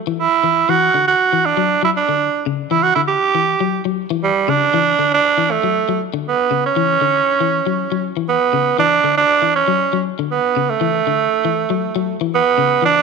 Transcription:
0.07 E3
0.19 E4
0.44 E3
0.69 E3 F#4
0.94 D3
1.08 F#4
1.33 E3
1.46 D4
1.57 F#3
1.83 F#3 E4
1.97 D4
2.09 D3
2.46 C#3
2.71 E3 E4
2.83 F#4
2.95 D3 E4
3.08 G4
3.35 E3
3.60 F#3
3.85 F#3
4.10 E3
4.24 G3
4.48 C#3 D4
4.74 E3
4.99 D3
5.14 D4
5.38 E3
5.51 A3
5.64 F#3
5.89 F#3
6.14 D3
6.28 B3
6.51 C#3
6.66 C#4
6.76 E3
7.01 D3
7.40 E3
7.67 F#3
7.92 F#3
8.17 E3
8.29 B3
8.53 C#3
8.79 E3 D4
9.04 D3
9.17 D4
9.42 E3
9.56 C#4
9.68 F#3
9.93 F#3
10.19 D3
10.31 B3
10.57 C#3
10.69 A3
10.81 E3
11.07 D3
11.45 E3
11.70 F#3
11.96 F#3
12.21 E3
12.35 B3
12.58 C#3
12.82 E3 D4

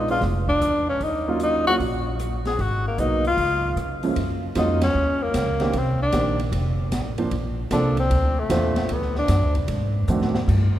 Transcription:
Already playing: A#1 D#4
0.08 G#3 B3 D4 F4, open hi-hat
0.21 F1, kick, snare, open hi-hat
0.48 D4, kick
0.61 E2, cross-stick, closed hi-hat
0.89 C#4
1.00 D#2 D#4, kick, open hi-hat
1.28 F#3 A#3 C#4 F4
1.40 D#4, closed hi-hat
1.67 F#3 A#3 C#4 F4 F#4, open hi-hat
1.80 A#1, kick, open hi-hat
2.19 cross-stick, closed hi-hat
2.45 G#4, snare, open hi-hat
2.59 G#1 F#4, kick, open hi-hat
2.88 A#3
2.98 B1 F#3 A#3 B3 D#4, closed hi-hat
3.25 F4, open hi-hat
3.37 C#2, kick, open hi-hat
3.76 C#3, cross-stick, closed hi-hat
4.03 F#2 F3 G#3 A#3 C#4, open hi-hat
4.16 F#2, kick, ride
4.55 F2 F#3 G#3 A#3 C#4 D#4 F4, kick, snare, hi-hat pedal, ride
4.81 C#4, snare, ride
4.94 D#2
5.23 A#3
5.34 C#2, kick, snare, hi-hat pedal, ride
5.60 D#3 A#3 C4 D4 G4, snare, ride
5.73 C2, kick, ride
5.78 C4
6.02 D4
6.12 A#1 D#3 A#3 C4 D4 G4, kick, snare, hi-hat pedal, ride
6.39 ride
6.52 F1, kick, ride
6.92 A1, kick, snare, hi-hat pedal, ride
7.18 F3 A#3 C4 D4 C5, ride
7.31 A#1, kick, ride
7.71 C2 F3 A#3 C4 D4 A4, kick, snare, hi-hat pedal, ride
7.97 C4, ride
8.10 D2, kick, ride
8.39 A3
8.50 E2 A#2 C4 D4 F4 C5, kick, snare, hi-hat pedal, ride
8.76 snare, ride
8.89 D2 B3, kick, ride
9.02 snare
9.16 D4, snare
9.28 F#2, snare, hi-hat pedal, ride
9.43 D2
9.55 C2, ride
9.68 G#2, kick, ride
10.08 A2 D#3 A3 C4 D4 F#4, hi-hat pedal, high tom
10.22 snare
10.35 snare
10.48 G2, kick, crash

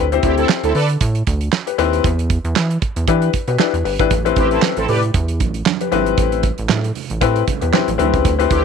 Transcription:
Already playing: D2
0.12 C4 E4 G4 C5, closed hi-hat
0.23 D2 C4 E4 G4, kick, closed hi-hat
0.38 C4 E4 A4, closed hi-hat
0.49 snare, clap
0.64 D2 C4 E4 A4, closed hi-hat
0.75 D3 A4 B4 D5, open hi-hat
0.90 closed hi-hat
1.01 A2, kick, closed hi-hat
1.15 closed hi-hat
1.27 D2, kick, closed hi-hat
1.41 closed hi-hat
1.52 snare, clap
1.67 G4 B4, closed hi-hat
1.78 D#2 C4 E4 G4 B4, closed hi-hat
1.93 closed hi-hat
2.04 E2, kick, closed hi-hat
2.19 closed hi-hat
2.30 kick, closed hi-hat
2.44 E2, closed hi-hat
2.56 E3, snare, clap
2.71 closed hi-hat
2.82 kick, closed hi-hat
2.96 E2, closed hi-hat
3.07 E3 D4 E4 G4 B4, kick, closed hi-hat
3.22 closed hi-hat
3.33 kick, closed hi-hat
3.48 B2 G4 B4, closed hi-hat
3.59 D4 E4 G4 B4, snare, clap
3.73 E2, closed hi-hat
3.84 G1 G4 B4, open hi-hat
3.99 G#1 D4 E4 G4 B4, kick, closed hi-hat
4.11 A1, kick, closed hi-hat, muted conga
4.25 C4 E4 G4 B4, closed hi-hat
4.36 A1 C4 E4 G4, kick, closed hi-hat, muted conga
4.51 C4 E4 A4, closed hi-hat
4.62 snare, clap, high conga
4.77 A1 C4 E4 A4, closed hi-hat
4.88 A2 G4 B4 D5, open hi-hat, low conga
5.03 closed hi-hat
5.14 E2, kick, closed hi-hat, muted conga
5.28 closed hi-hat
5.40 A1, kick, closed hi-hat, muted conga
5.54 closed hi-hat
5.66 snare, clap, high conga
5.81 G4 B4, closed hi-hat
5.92 G#1 C4 E4 G4 B4, closed hi-hat, high conga
6.06 closed hi-hat
6.18 A1, kick, closed hi-hat, muted conga
6.32 closed hi-hat
6.43 kick, closed hi-hat, muted conga
6.58 A1, closed hi-hat
6.69 A2, snare, clap, high conga
6.84 closed hi-hat
6.95 open hi-hat, low conga
7.10 A1, closed hi-hat
7.21 A2 C4 E4 G4 B4, kick, closed hi-hat, muted conga
7.36 closed hi-hat
7.48 kick, closed hi-hat, muted conga, low conga
7.61 E2 G4 B4, closed hi-hat
7.72 C4 E4 G4 B4, snare, clap, high conga
7.88 A1, closed hi-hat
7.98 D2 C4 E4 G4 B4, closed hi-hat, high conga
8.14 C#2, kick, closed hi-hat
8.25 D2, kick, closed hi-hat, muted conga
8.39 C4 E4 G4 B4, closed hi-hat
8.50 D2 C4 E4 G4, kick, closed hi-hat, muted conga

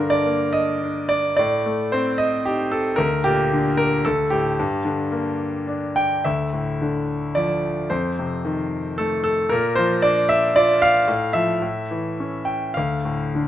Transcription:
Already playing: G2 A#4
0.00 D3
0.10 D5
0.26 A#3
0.53 D#5
0.83 D4
1.09 D5
1.37 A2 D5
1.66 A3
1.92 C4 C5
2.18 D#5
2.45 D#4 G4
2.72 A4
2.96 D2 A#4
3.24 A#2 G4
3.53 D3
3.77 A#4
4.05 D2 A4
4.30 A2 G4
4.59 G2
4.85 D3
5.12 A#3
5.67 D4
5.96 G5
6.24 D2 E5
6.53 A2
6.82 D3
7.35 F3 D5
7.90 F2 C5
8.19 C3
8.45 D#3
8.98 A3 A4
9.24 A4
9.49 A#2 A#4
9.75 F3 C5
10.02 D4 D5
10.29 E5
10.56 F4 D5
10.82 F5
11.08 A2
11.33 F3 E5
11.62 A2
11.91 E3
12.20 C#4
12.45 G5
12.74 D2 F5
13.05 A2
13.35 D3

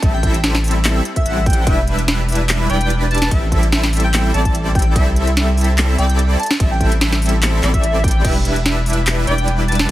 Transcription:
0.02 A1 G3 C4 E4 A4 E5, kick, closed hi-hat
0.14 G5
0.23 G5, kick, closed hi-hat
0.34 closed hi-hat
0.44 snare, closed hi-hat
0.55 snare
0.64 closed hi-hat, open hi-hat
0.71 closed hi-hat
0.85 clap, closed hi-hat
1.05 closed hi-hat
1.16 E5, kick, closed hi-hat
1.26 A1 G3 C4 E4 A4 F#5, closed hi-hat
1.46 G5, kick, closed hi-hat
1.50 closed hi-hat
1.53 closed hi-hat
1.57 G5
1.67 E1 G3 D4 E4 B4 E5, kick, closed hi-hat, ride
1.87 closed hi-hat
1.99 closed hi-hat
2.08 snare, closed hi-hat
2.29 closed hi-hat, open hi-hat
2.35 closed hi-hat
2.49 clap, closed hi-hat, ride
2.70 E1 G3 D4 E4 B4 D5 G5, closed hi-hat
2.81 closed hi-hat
2.90 closed hi-hat
3.11 A5, closed hi-hat
3.15 closed hi-hat
3.18 closed hi-hat
3.22 A5, snare
3.31 A1 G3 C4 E4 A4 E5, kick, closed hi-hat, ride
3.52 kick, closed hi-hat
3.63 closed hi-hat
3.72 snare, closed hi-hat
3.84 snare
3.93 closed hi-hat, open hi-hat
4.00 closed hi-hat
4.04 G5
4.14 G5, clap, closed hi-hat, ride
4.34 A1 G3 C4 E4 A4 D5 A5, closed hi-hat
4.45 A5, kick, closed hi-hat
4.55 closed hi-hat
4.75 G5, kick, closed hi-hat
4.79 closed hi-hat
4.82 G5, closed hi-hat
4.96 C2 G3 C4 E4 A4 E5, kick, closed hi-hat, ride
5.16 closed hi-hat
5.27 closed hi-hat
5.37 snare, closed hi-hat
5.57 closed hi-hat, open hi-hat
5.64 closed hi-hat
5.78 clap, closed hi-hat, ride
5.98 C2 G3 C4 E4 A4 D5 G5, closed hi-hat
6.09 closed hi-hat
6.19 closed hi-hat
6.39 A5, closed hi-hat
6.43 closed hi-hat
6.46 closed hi-hat
6.50 A5, snare
6.60 A1 G3 C4 E4 A4 E5, kick, closed hi-hat, ride
6.71 G5
6.80 G5, kick, closed hi-hat
6.92 closed hi-hat
7.01 snare, closed hi-hat
7.12 snare
7.22 closed hi-hat, open hi-hat
7.29 closed hi-hat
7.42 clap, closed hi-hat, ride
7.63 A1 G3 C4 E4 A4 D5, clap, closed hi-hat
7.74 E5, kick, closed hi-hat
7.83 closed hi-hat
8.04 G5, kick, closed hi-hat
8.08 closed hi-hat
8.11 closed hi-hat
8.15 G5
8.24 E1 G3 D4 E4 B4 E5, kick, closed hi-hat, ride, crash
8.45 closed hi-hat
8.56 closed hi-hat
8.66 snare, closed hi-hat
8.86 closed hi-hat, open hi-hat
8.93 closed hi-hat
9.07 clap, closed hi-hat, ride
9.27 E1 G3 D4 E4 B4 D5 G5, closed hi-hat
9.38 closed hi-hat
9.48 closed hi-hat
9.68 A5, closed hi-hat
9.72 closed hi-hat
9.75 A5, closed hi-hat
9.79 snare

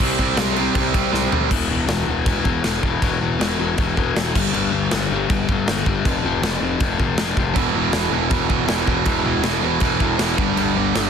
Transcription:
0.00 C2 C3 G3 C4, kick, crash
0.18 C2 C3 G3 C4, kick, crash
0.36 C2 C3 G3 C4, snare, crash
0.56 C3 G3 C4, crash
0.75 C2 C3 G3 C4, kick, crash
0.94 C3 G3 C4, kick, crash
1.13 C2 C3 G3 C4, snare
1.32 D2 C3 G3 C4, floor tom
1.51 E1 E2 B2 E3, kick, crash
1.69 E1 E2 B2 E3
1.87 E1 E2 B2 E3, snare, crash
2.06 E1 E2 B2 E3
2.25 E1 E2 B2 E3, kick, crash
2.44 E1 E2 B2 E3, kick
2.64 E1 E2 B2 E3, snare, crash
2.83 E1 E2 B2 E3, kick
3.02 E1 E2 B2 E3, kick, crash
3.21 E1 E2 B2 E3
3.39 E1 E2 B2 E3, snare, crash
3.59 E1 E2 B2 E3
3.77 E1 E2 B2 E3, kick, crash
3.97 E1 E2 B2 E3, kick
4.15 E1 E2 B2 E3, snare, crash
4.34 G1 G2 D3 G3, kick, crash
4.53 G1 G2 D3 G3, crash
4.71 G1 G2 D3 G3
4.90 G1 G2 D3 G3, snare, crash
5.10 G1 G2 D3 G3
5.28 G1 G2 D3 G3, kick, crash
5.49 G1 G2 D3 G3, kick
5.67 G1 G2 D3 G3, snare, crash
5.86 G1 G2 D3 G3, kick
6.05 F1 F2 C3 F3, kick, crash
6.23 F1 F2 C3 F3
6.42 F1 F2 C3 F3, snare, crash
6.61 F1 F2 C3 F3
6.79 F1 F2 C3 F3, kick, crash
6.99 F1 F2 C3 F3, kick
7.17 F1 F2 C3 F3, snare, crash
7.37 F1 F2 C3 F3, kick
7.55 E1 E2 B2 E3, kick, crash
7.74 E1 E2 B2 E3
7.92 E1 E2 B2 E3, snare, crash
8.11 E1 E2 B2 E3
8.29 E1 E2 B2 E3, kick, crash
8.49 E1 E2 B2 E3, kick
8.67 E1 E2 B2 E3, snare, crash
8.87 E1 E2 B2 E3, kick
9.05 E1 E2 B2 E3, kick, crash
9.24 E1 E2 B2 E3
9.42 E1 E2 B2 E3, snare, crash
9.61 E1 E2 B2 E3
9.80 E1 E2 B2 E3, kick, crash
10.00 E1 E2 B2 E3, kick
10.19 E1 E2 B2 E3, snare, crash
10.38 G1 G2 D3 G3, kick
10.57 G1 G2 D3 G3, crash
10.76 G1 G2 D3 G3
10.95 G1 G2 D3 G3, snare, crash

